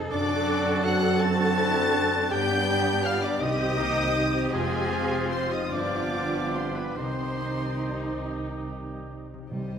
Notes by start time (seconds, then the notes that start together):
Already playing: F2 C3 C4 D#4 G#4 A4 C5
0.10 F#2 D3 C4 D4 F#4 A4 D5 D6
0.48 D4
0.84 F#4 C5 F#5 F#6
1.20 D3 C4 F#4 A4 A5 A6
1.57 F#3 E4
1.93 D4
2.31 G2 D3 B3 G4 G5 G6
2.69 D4
3.04 F4 G4 B4 F5 F6
3.22 D4 D5 D6
3.41 C2 C3 D#3 C4 D#4 G4 D#5 D#6
3.78 A#3 C4 D#4
4.15 C4 G4 C5
4.52 F1 F2 F3 G#3 C4 F4 G#4 G#5
4.92 C4
5.31 C4 F4 C5 C6
5.51 D#4 D#5 D#6
5.71 G1 G2 F3 B3 D4 F4 G4 D5 D6
6.13 B3
6.53 C4 G4 C5 C6
6.75 B3 B4 B5
6.97 C2 C3 D#3 C4 D#4 G4 C5 C6
7.41 C4
7.84 G4
8.25 D#4
8.68 G3
9.11 C4
9.34 C3
9.38 G3
9.43 D#4
9.47 C2 G3 G4
9.51 C3 C5 D#5